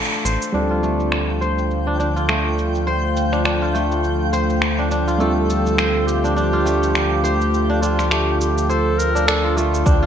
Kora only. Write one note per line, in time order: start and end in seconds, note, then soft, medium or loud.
0.00 0.83 A3 medium
0.00 0.54 D4 medium
0.00 0.70 F4 medium
0.25 1.41 C5 medium
0.54 1.86 D4 medium
0.71 2.16 F4 medium
0.83 2.28 A3 medium
1.41 2.60 C5 medium
1.87 1.99 D4 medium
1.99 3.32 D4 medium
2.16 3.61 F4 medium
2.29 3.74 A3 medium
2.87 4.06 C5 medium
3.32 3.45 D4 medium
3.45 4.78 D4 medium
3.62 5.07 F4 medium
3.74 5.20 A3 medium
4.33 5.52 C5 medium
4.79 4.91 D4 medium
4.91 6.24 D4 medium
5.08 6.53 F4 medium
5.20 6.65 A3 medium
5.78 6.97 C5 medium
6.24 6.36 D4 medium
6.36 7.69 D4 medium
6.53 7.98 F4 medium
6.66 8.11 A3 medium
7.24 8.43 C5 medium
7.70 7.82 D4 medium
7.82 9.15 D4 medium
7.99 9.44 F4 medium
8.11 9.56 A3 medium
8.69 9.88 C5 medium
9.15 9.27 D4 medium
9.28 9.85 D4 medium
9.44 10.02 F4 medium
9.57 10.06 A3 medium
9.86 10.06 D4 medium
10.03 10.06 F4 medium